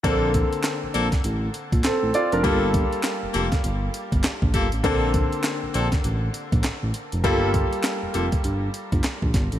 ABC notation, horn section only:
X:1
M:4/4
L:1/8
Q:"Swing 16ths" 1/4=100
K:Bb
V:1 name="Horn section"
[B,CDA] z2 [B,CDA] z4 | [B,FGA] z2 [B,FGA] z3 [B,FGA] | [B,CDA] z2 [B,CDA] z4 | [B,FGA] z2 [B,FGA] z4 |]